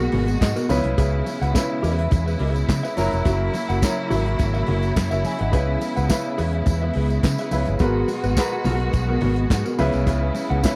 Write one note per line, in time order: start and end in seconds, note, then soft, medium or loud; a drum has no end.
0.00 0.68 A#2 medium
0.00 2.94 B2 medium
0.00 0.72 G#3 medium
0.00 2.94 G#3 medium
0.00 0.11 B3 medium
0.00 0.68 F#4 medium
0.00 0.72 F#4 medium
0.00 0.12 F#4 medium
0.00 0.13 A#4 medium
0.00 0.72 A#4 medium
0.00 0.71 B4 medium
0.12 0.35 G#1 medium
0.12 0.35 B3 medium
0.12 0.28 F#4 medium
0.12 0.27 A#4 medium
0.12 open hi-hat medium
0.12 muted conga soft
0.12 low conga medium
0.27 muted clean electric guitar stroke soft
0.27 closed hi-hat soft
0.27 tambourine soft
0.41 0.53 G#2 medium
0.41 0.68 D#5 medium
0.41 muted clean electric guitar stroke soft
0.41 kick loud
0.41 snare loud
0.41 clap medium
0.41 closed hi-hat medium
0.41 tambourine medium
0.41 high conga medium
0.56 0.78 B3 medium
0.56 0.69 F#4 medium
0.56 0.70 A#4 medium
0.56 snare soft
0.56 tambourine medium
0.69 0.82 C#2 loud
0.69 1.38 C#3 medium
0.69 7.76 C#3 medium
0.69 1.39 C#4 medium
0.69 0.77 D#4 medium
0.69 7.76 E4 medium
0.69 1.39 B4 loud
0.69 0.96 C#5 medium
0.69 muted clean electric guitar stroke soft
0.69 open hi-hat medium
0.69 tambourine medium
0.69 high conga medium
0.77 1.42 E4 medium
0.84 0.95 C2 medium
0.84 muted clean electric guitar stroke soft
0.84 closed hi-hat soft
0.84 high conga soft
0.98 1.21 C#2 medium
0.98 1.24 G#4 medium
0.98 1.25 B4 medium
0.98 1.25 E5 medium
0.98 kick loud
0.98 closed hi-hat medium
0.98 tambourine soft
0.98 muted conga medium
1.26 open hi-hat medium
1.26 tambourine soft
1.26 muted conga medium
1.42 1.52 C#2 loud
1.42 1.54 G#4 soft
1.42 1.54 B4 medium
1.42 1.56 F#5 medium
1.42 closed hi-hat soft
1.42 tambourine soft
1.54 2.28 C#3 medium
1.54 2.28 C#4 medium
1.54 2.28 E4 medium
1.54 2.29 B4 medium
1.54 kick loud
1.54 snare loud
1.54 clap medium
1.54 closed hi-hat medium
1.54 tambourine loud
1.54 high conga medium
1.70 muted clean electric guitar stroke soft
1.83 2.06 E2 medium
1.83 1.98 G#4 medium
1.83 1.98 B4 medium
1.83 1.97 E5 medium
1.83 open hi-hat medium
1.83 tambourine soft
1.98 2.11 G#4 soft
1.98 2.11 B4 medium
1.98 2.12 E5 medium
1.98 closed hi-hat soft
2.11 2.35 E2 loud
2.11 muted clean electric guitar stroke soft
2.11 kick loud
2.11 closed hi-hat medium
2.11 tambourine medium
2.11 muted conga soft
2.11 low conga medium
2.26 2.39 G#4 soft
2.26 2.40 B4 medium
2.26 2.41 E5 medium
2.26 tambourine soft
2.39 2.63 C#2 medium
2.39 2.62 G#4 medium
2.39 2.55 B4 medium
2.39 2.54 E5 medium
2.39 open hi-hat medium
2.39 muted conga soft
2.55 muted clean electric guitar stroke medium
2.55 closed hi-hat soft
2.55 tambourine soft
2.69 2.81 C#3 medium
2.69 muted clean electric guitar stroke soft
2.69 kick loud
2.69 snare loud
2.69 clap medium
2.69 closed hi-hat medium
2.69 tambourine medium
2.69 high conga medium
2.83 2.96 G#4 medium
2.83 2.97 B4 medium
2.83 2.97 E5 medium
2.83 snare soft
2.83 tambourine medium
2.97 3.09 F#1 medium
2.97 3.66 F#3 medium
2.97 5.51 F#3 medium
2.97 5.51 A#3 medium
2.97 3.66 C#4 medium
2.97 3.66 E4 medium
2.97 3.67 A#4 loud
2.97 muted clean electric guitar stroke soft
2.97 open hi-hat medium
2.97 tambourine medium
2.97 high conga medium
3.11 3.23 F1 medium
3.11 muted clean electric guitar stroke soft
3.11 closed hi-hat soft
3.11 tambourine soft
3.11 high conga medium
3.25 3.48 F#1 medium
3.25 3.52 F#4 medium
3.25 3.53 A#4 medium
3.25 3.53 E5 medium
3.25 kick loud
3.25 closed hi-hat medium
3.25 tambourine soft
3.25 muted conga medium
3.53 open hi-hat medium
3.53 tambourine medium
3.53 muted conga medium
3.69 3.80 F#1 loud
3.69 3.81 F#4 soft
3.69 3.82 A#4 soft
3.69 3.83 F#5 medium
3.69 closed hi-hat soft
3.69 tambourine soft
3.82 4.56 F#3 medium
3.82 4.56 C#4 medium
3.82 4.56 E4 medium
3.82 4.56 A#4 medium
3.82 kick loud
3.82 snare loud
3.82 clap medium
3.82 closed hi-hat medium
3.82 tambourine loud
3.82 high conga medium
3.97 muted clean electric guitar stroke soft
4.10 4.34 G#1 medium
4.10 4.26 F#4 loud
4.10 4.25 A#4 medium
4.10 4.25 E5 loud
4.10 open hi-hat medium
4.10 tambourine soft
4.10 low conga medium
4.26 4.39 F#4 soft
4.26 4.39 A#4 medium
4.26 closed hi-hat soft
4.39 4.62 G#1 medium
4.39 muted clean electric guitar stroke soft
4.39 kick loud
4.39 closed hi-hat medium
4.39 tambourine medium
4.39 muted conga medium
4.54 4.66 F#4 soft
4.54 4.67 A#4 medium
4.54 4.68 E5 medium
4.54 tambourine soft
4.67 4.91 F#1 medium
4.67 4.90 F#4 medium
4.67 4.83 A#4 medium
4.67 4.82 E5 medium
4.67 open hi-hat medium
4.67 muted conga soft
4.67 low conga medium
4.82 muted clean electric guitar stroke soft
4.82 closed hi-hat soft
4.82 tambourine soft
4.96 5.08 F#2 medium
4.96 muted clean electric guitar stroke soft
4.96 kick medium
4.96 snare loud
4.96 clap medium
4.96 closed hi-hat medium
4.96 tambourine medium
4.96 high conga medium
5.11 5.22 F#1 medium
5.11 5.23 F#4 medium
5.11 5.24 A#4 medium
5.11 5.24 C#5 medium
5.11 5.25 E5 medium
5.11 5.24 E5 medium
5.11 snare soft
5.11 tambourine soft
5.24 5.39 E5 medium
5.24 5.39 G#5 medium
5.24 muted clean electric guitar stroke soft
5.24 open hi-hat medium
5.24 tambourine medium
5.24 high conga medium
5.38 5.51 G#1 medium
5.38 5.67 D#5 medium
5.38 5.66 F#5 medium
5.38 muted clean electric guitar stroke soft
5.38 closed hi-hat medium
5.38 high conga soft
5.52 5.76 C#2 medium
5.52 5.89 C#3 medium
5.52 10.76 G#3 medium
5.52 7.78 B3 medium
5.52 5.89 C#4 medium
5.52 5.89 E4 medium
5.52 5.79 G#4 medium
5.52 5.90 B4 medium
5.52 5.80 B4 medium
5.52 5.80 E5 medium
5.52 kick loud
5.52 closed hi-hat medium
5.52 tambourine soft
5.52 muted conga medium
5.81 open hi-hat medium
5.81 tambourine medium
5.81 muted conga medium
5.96 6.08 C#2 medium
5.96 6.09 G#4 soft
5.96 6.10 B4 medium
5.96 6.11 F#5 medium
5.96 closed hi-hat soft
5.96 tambourine soft
6.09 6.83 C#3 medium
6.09 6.83 C#4 medium
6.09 6.83 E4 medium
6.09 6.83 B4 medium
6.09 kick loud
6.09 snare loud
6.09 clap medium
6.09 closed hi-hat medium
6.09 tambourine loud
6.09 high conga medium
6.25 muted clean electric guitar stroke medium
6.38 6.61 E2 medium
6.38 6.54 G#4 medium
6.38 6.53 B4 medium
6.38 6.53 E5 loud
6.38 open hi-hat medium
6.38 tambourine soft
6.53 6.66 G#4 soft
6.53 6.67 B4 medium
6.53 6.67 E5 medium
6.53 closed hi-hat soft
6.66 6.89 E2 medium
6.66 kick loud
6.66 closed hi-hat medium
6.66 tambourine medium
6.66 muted conga soft
6.66 low conga medium
6.82 6.94 G#4 medium
6.82 6.95 B4 medium
6.82 6.96 E5 medium
6.93 7.18 C#2 medium
6.93 7.17 G#4 medium
6.93 7.11 B4 medium
6.93 7.09 E5 medium
6.93 open hi-hat medium
6.93 muted conga soft
7.09 muted clean electric guitar stroke soft
7.09 closed hi-hat soft
7.09 tambourine soft
7.23 7.35 C#3 medium
7.23 muted clean electric guitar stroke soft
7.23 kick loud
7.23 snare loud
7.23 clap medium
7.23 closed hi-hat medium
7.23 tambourine medium
7.23 high conga medium
7.38 7.52 G#4 medium
7.38 7.52 B4 medium
7.38 7.53 E5 medium
7.38 snare soft
7.38 tambourine soft
7.51 7.64 C#2 medium
7.51 7.70 C#3 medium
7.51 7.71 C#4 medium
7.51 7.71 E4 medium
7.51 7.71 B4 medium
7.51 open hi-hat medium
7.51 tambourine medium
7.51 high conga medium
7.65 7.78 G1 medium
7.65 muted clean electric guitar stroke soft
7.65 closed hi-hat soft
7.65 tambourine soft
7.65 high conga soft
7.79 8.03 G#1 medium
7.79 9.77 B2 medium
7.79 8.17 G#3 medium
7.79 10.76 B3 medium
7.79 8.07 B3 medium
7.79 9.77 F#4 medium
7.79 8.17 F#4 medium
7.79 8.07 F#4 medium
7.79 8.17 A#4 medium
7.79 8.07 A#4 medium
7.79 8.17 B4 medium
7.79 kick loud
7.79 closed hi-hat medium
7.79 tambourine soft
7.79 muted conga medium
8.08 muted clean electric guitar stroke soft
8.08 open hi-hat medium
8.08 tambourine soft
8.08 muted conga medium
8.24 8.34 G#1 loud
8.24 8.36 B3 medium
8.24 8.37 F#4 soft
8.24 8.38 B4 medium
8.24 closed hi-hat soft
8.24 tambourine soft
8.37 9.10 G#3 medium
8.37 9.10 F#4 medium
8.37 9.11 A#4 medium
8.37 9.11 B4 medium
8.37 kick loud
8.37 snare loud
8.37 clap medium
8.37 closed hi-hat medium
8.37 tambourine loud
8.37 high conga medium
8.52 muted clean electric guitar stroke medium
8.64 8.88 B1 medium
8.64 8.81 B3 medium
8.64 8.80 F#4 loud
8.64 8.79 A#4 loud
8.64 open hi-hat medium
8.64 tambourine soft
8.64 low conga medium
8.80 8.93 B3 soft
8.80 8.93 F#4 medium
8.80 8.94 A#4 medium
8.80 closed hi-hat soft
8.93 9.16 B1 medium
8.93 muted clean electric guitar stroke soft
8.93 kick loud
8.93 closed hi-hat medium
8.93 tambourine medium
8.93 muted conga soft
9.09 9.21 B3 soft
9.09 9.22 F#4 medium
9.09 9.23 A#4 medium
9.21 9.45 G#1 medium
9.21 9.44 B3 medium
9.21 9.38 F#4 medium
9.21 9.36 A#4 medium
9.21 open hi-hat medium
9.21 low conga medium
9.36 muted clean electric guitar stroke medium
9.36 closed hi-hat soft
9.50 9.62 G#2 medium
9.50 muted clean electric guitar stroke soft
9.50 kick loud
9.50 snare loud
9.50 clap loud
9.50 closed hi-hat medium
9.50 tambourine medium
9.50 high conga medium
9.65 9.82 B3 medium
9.65 9.78 F#4 medium
9.65 9.79 A#4 medium
9.65 tambourine medium
9.78 9.91 C#2 medium
9.78 10.47 C#3 loud
9.78 10.76 C#3 medium
9.78 10.48 C#4 medium
9.78 10.76 E4 medium
9.78 10.48 E4 medium
9.78 10.01 G#4 medium
9.78 9.94 B4 medium
9.78 10.48 B4 loud
9.78 9.93 E5 medium
9.78 open hi-hat medium
9.78 tambourine medium
9.78 high conga medium
9.93 10.07 C2 medium
9.93 muted clean electric guitar stroke soft
9.93 closed hi-hat soft
9.93 tambourine soft
9.93 high conga soft
10.07 10.29 C#2 loud
10.07 10.33 G#4 medium
10.07 10.34 B4 medium
10.07 10.34 E5 medium
10.07 kick loud
10.07 closed hi-hat medium
10.07 tambourine medium
10.07 muted conga medium
10.35 muted clean electric guitar stroke soft
10.35 open hi-hat medium
10.35 tambourine soft
10.35 muted conga medium
10.50 10.61 C#2 loud
10.50 10.63 G#4 soft
10.50 10.63 B4 soft
10.50 10.65 F#5 medium
10.50 closed hi-hat soft
10.63 10.76 C#3 medium
10.63 10.76 C#4 medium
10.63 10.76 E4 medium
10.63 10.76 B4 medium
10.63 kick loud
10.63 snare loud
10.63 clap medium
10.63 closed hi-hat medium
10.63 tambourine loud
10.63 high conga medium